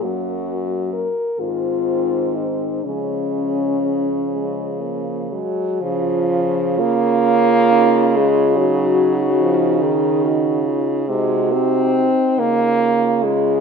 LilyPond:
<<
  \new Staff \with { instrumentName = "French horn" } { \time 6/8 \key des \major \tempo 4. = 45 ges'4 bes'8 f'4 ees'8 | des'2~ des'8 r8 | r4. des'8 ees'8 f'8 | ges'4. aes'8 ges'8 f'8 |
ees'2~ ees'8 r8 | }
  \new Staff \with { instrumentName = "French horn" } { \time 6/8 \key des \major bes4 r8 c'4. | aes4. aes8 bes8 aes8 | f'2. | ees'2. |
ges'4 r8 f'4. | }
  \new Staff \with { instrumentName = "French horn" } { \clef bass \time 6/8 \key des \major ges4 r8 ees4. | f2~ f8 ges8 | f4 bes4. aes8 | ges4 f8 ees4 r8 |
aes8 c'4 bes4 aes8 | }
  \new Staff \with { instrumentName = "French horn" } { \clef bass \time 6/8 \key des \major ges,4 r8 aes,4. | des2~ des8 r8 | des2.~ | des2. |
c4 r8 des4. | }
>>